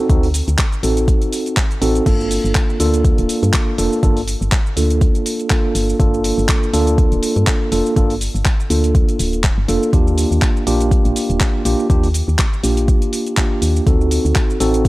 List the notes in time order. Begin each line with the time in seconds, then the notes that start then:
0.09 D2 C4 D#4 F#4 A4, kick, closed hi-hat, shaker
0.23 open hi-hat, shaker
0.34 open hi-hat, shaker
0.48 D2, closed hi-hat, shaker
0.58 kick, clap, closed hi-hat, shaker
0.72 closed hi-hat, shaker
0.83 A1 C4 D#4 F#4 A4, open hi-hat, shaker
0.97 closed hi-hat, shaker
1.08 kick, closed hi-hat, shaker
1.22 closed hi-hat, shaker
1.32 open hi-hat, shaker
1.46 closed hi-hat, shaker
1.57 kick, clap, closed hi-hat, shaker
1.71 closed hi-hat, shaker
1.82 A1 C4 D#4 F#4 A4, open hi-hat, shaker
1.95 closed hi-hat, shaker
2.06 G1 A#3 D4 F4 A4, kick, closed hi-hat, crash, shaker
2.21 shaker
2.31 open hi-hat, shaker
2.44 G1, shaker
2.55 kick, clap, closed hi-hat, shaker
2.70 shaker
2.80 D2 A#3 D4 F4 A4, open hi-hat, shaker
2.94 closed hi-hat, shaker
3.05 kick, closed hi-hat, shaker
3.18 D1, closed hi-hat, shaker
3.29 open hi-hat, shaker
3.43 G2, closed hi-hat, shaker
3.53 kick, clap, closed hi-hat, shaker
3.78 F1 A#3 D4 F4 A4, open hi-hat, shaker
3.93 shaker
4.03 G1 A#3 D4 F4 A4, kick, closed hi-hat, shaker
4.17 open hi-hat, shaker
4.28 open hi-hat, shaker
4.41 G1, shaker
4.52 kick, clap, closed hi-hat, shaker
4.67 shaker
4.77 D2 A#3 D4 F4 A4, open hi-hat, shaker
4.90 closed hi-hat, shaker
5.01 kick, closed hi-hat, shaker
5.15 closed hi-hat, shaker
5.26 open hi-hat, shaker
5.40 closed hi-hat, shaker
5.50 A#3 D4 F4 A4, kick, clap, closed hi-hat, shaker
5.75 G1, open hi-hat, shaker
5.90 shaker
5.99 G1 A#3 D4 F4 A4, kick, closed hi-hat, shaker
6.14 shaker
6.24 open hi-hat, shaker
6.38 G1, shaker
6.49 kick, clap, closed hi-hat, shaker
6.63 shaker
6.73 D2 A#3 D4 F4 A4, open hi-hat, shaker
6.87 closed hi-hat, shaker
6.98 kick, closed hi-hat, shaker
7.12 D1, closed hi-hat, shaker
7.23 open hi-hat, shaker
7.36 G2, closed hi-hat, shaker
7.47 kick, clap, closed hi-hat, shaker
7.72 F1 A#3 D4 F4 A4, open hi-hat, shaker
7.86 shaker
7.96 G1 A#3 D4 F4 A4, kick, closed hi-hat, shaker
8.10 open hi-hat, shaker
8.21 open hi-hat, shaker
8.35 G1, shaker
8.45 kick, clap, closed hi-hat, shaker
8.60 shaker
8.70 D2 A#3 D4 F4 A4, open hi-hat, shaker
8.84 closed hi-hat, shaker
8.95 kick, closed hi-hat, shaker
9.09 closed hi-hat, shaker
9.19 D1, open hi-hat, shaker
9.33 closed hi-hat, shaker
9.44 kick, clap, closed hi-hat, shaker
9.57 G1
9.68 F1 A#3 D4 F4 A4, open hi-hat, shaker
9.83 shaker
9.93 D#2 A#3 D4 F4 G4, kick, closed hi-hat, shaker
10.08 shaker
10.18 open hi-hat, shaker
10.31 D#2, shaker
10.42 kick, clap, closed hi-hat, shaker
10.57 shaker
10.67 A#1 A#3 D4 F4 G4, open hi-hat, shaker
10.81 closed hi-hat, shaker
10.91 kick, closed hi-hat, shaker
11.05 A#1, closed hi-hat, shaker
11.16 open hi-hat, shaker
11.30 D#1, closed hi-hat, shaker
11.40 kick, clap, closed hi-hat, shaker
11.65 A#1 A#3 D4 F4 G4, open hi-hat, shaker
11.80 shaker
11.90 D#2 A#3 D4 F4 G4, kick, closed hi-hat, shaker
12.04 open hi-hat, shaker
12.14 open hi-hat, shaker
12.28 D#2, shaker
12.39 kick, clap, closed hi-hat, shaker
12.53 shaker
12.63 A#1 A#3 D4 F4 G4, open hi-hat, shaker
12.77 closed hi-hat, shaker
12.88 kick, closed hi-hat, shaker
13.02 closed hi-hat, shaker
13.13 open hi-hat, shaker
13.27 closed hi-hat, shaker
13.37 A#3 D4 F4 G4, kick, clap, closed hi-hat, shaker
13.62 D#2, open hi-hat, shaker
13.76 shaker
13.86 D2 C4 D#4 F#4 A4, kick, closed hi-hat, shaker
14.01 shaker
14.11 open hi-hat, shaker
14.25 D2, shaker
14.35 kick, clap, closed hi-hat, shaker
14.50 shaker
14.60 A1 C4 D#4 F#4 A4, open hi-hat, shaker
14.74 closed hi-hat, shaker
14.85 kick, closed hi-hat